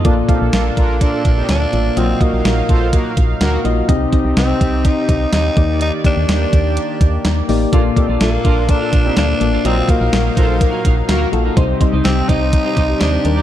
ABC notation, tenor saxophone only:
X:1
M:4/4
L:1/8
Q:1/4=125
K:Bb
V:1 name="Tenor saxophone"
z2 B,2 D2 D2 | C B,6 z | z2 C2 E2 E2 | E D6 z |
z2 B,2 D2 D2 | C B,6 z | z2 C E3 D2 |]